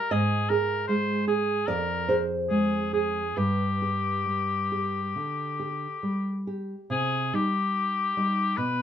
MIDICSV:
0, 0, Header, 1, 3, 480
1, 0, Start_track
1, 0, Key_signature, -3, "minor"
1, 0, Tempo, 780234
1, 72, Time_signature, 4, 2, 24, 8
1, 1032, Tempo, 826446
1, 1512, Tempo, 884956
1, 3432, Tempo, 842697
1, 5013, End_track
2, 0, Start_track
2, 0, Title_t, "Oboe"
2, 0, Program_c, 0, 68
2, 0, Note_on_c, 0, 70, 96
2, 74, Note_on_c, 0, 68, 91
2, 83, Note_off_c, 0, 70, 0
2, 305, Note_on_c, 0, 70, 92
2, 314, Note_off_c, 0, 68, 0
2, 535, Note_off_c, 0, 70, 0
2, 539, Note_on_c, 0, 72, 90
2, 777, Note_off_c, 0, 72, 0
2, 785, Note_on_c, 0, 68, 83
2, 1030, Note_on_c, 0, 70, 93
2, 1038, Note_off_c, 0, 68, 0
2, 1347, Note_off_c, 0, 70, 0
2, 1510, Note_on_c, 0, 68, 78
2, 1726, Note_off_c, 0, 68, 0
2, 1746, Note_on_c, 0, 68, 74
2, 1982, Note_on_c, 0, 67, 76
2, 1990, Note_off_c, 0, 68, 0
2, 3679, Note_off_c, 0, 67, 0
2, 3925, Note_on_c, 0, 68, 101
2, 4172, Note_on_c, 0, 67, 83
2, 4180, Note_off_c, 0, 68, 0
2, 4872, Note_on_c, 0, 71, 104
2, 4881, Note_off_c, 0, 67, 0
2, 5013, Note_off_c, 0, 71, 0
2, 5013, End_track
3, 0, Start_track
3, 0, Title_t, "Nylon-string guitar"
3, 0, Program_c, 1, 24
3, 0, Note_on_c, 1, 67, 70
3, 68, Note_on_c, 1, 75, 117
3, 71, Note_off_c, 1, 67, 0
3, 73, Note_on_c, 1, 44, 82
3, 308, Note_on_c, 1, 68, 67
3, 547, Note_on_c, 1, 56, 68
3, 688, Note_off_c, 1, 68, 0
3, 784, Note_on_c, 1, 68, 71
3, 933, Note_off_c, 1, 56, 0
3, 1005, Note_off_c, 1, 75, 0
3, 1007, Note_off_c, 1, 44, 0
3, 1031, Note_off_c, 1, 68, 0
3, 1032, Note_on_c, 1, 74, 100
3, 1033, Note_on_c, 1, 41, 81
3, 1260, Note_off_c, 1, 74, 0
3, 1269, Note_on_c, 1, 72, 97
3, 1273, Note_on_c, 1, 68, 61
3, 1511, Note_on_c, 1, 56, 66
3, 1651, Note_off_c, 1, 68, 0
3, 1744, Note_on_c, 1, 68, 63
3, 1885, Note_off_c, 1, 56, 0
3, 1960, Note_off_c, 1, 72, 0
3, 1961, Note_off_c, 1, 41, 0
3, 1980, Note_on_c, 1, 71, 82
3, 1983, Note_off_c, 1, 68, 0
3, 1983, Note_on_c, 1, 43, 75
3, 2225, Note_on_c, 1, 67, 57
3, 2464, Note_on_c, 1, 55, 61
3, 2616, Note_off_c, 1, 67, 0
3, 2713, Note_on_c, 1, 67, 64
3, 2858, Note_off_c, 1, 55, 0
3, 2935, Note_off_c, 1, 43, 0
3, 2952, Note_on_c, 1, 50, 62
3, 3100, Note_off_c, 1, 67, 0
3, 3188, Note_on_c, 1, 67, 58
3, 3335, Note_off_c, 1, 50, 0
3, 3424, Note_on_c, 1, 55, 61
3, 3576, Note_off_c, 1, 67, 0
3, 3655, Note_off_c, 1, 71, 0
3, 3676, Note_on_c, 1, 67, 55
3, 3822, Note_off_c, 1, 55, 0
3, 3919, Note_on_c, 1, 48, 83
3, 3922, Note_off_c, 1, 67, 0
3, 4155, Note_off_c, 1, 48, 0
3, 4167, Note_on_c, 1, 55, 64
3, 4167, Note_on_c, 1, 63, 65
3, 4617, Note_off_c, 1, 55, 0
3, 4617, Note_off_c, 1, 63, 0
3, 4643, Note_on_c, 1, 55, 60
3, 4646, Note_on_c, 1, 63, 66
3, 4853, Note_off_c, 1, 55, 0
3, 4854, Note_off_c, 1, 63, 0
3, 4874, Note_on_c, 1, 47, 82
3, 5013, Note_off_c, 1, 47, 0
3, 5013, End_track
0, 0, End_of_file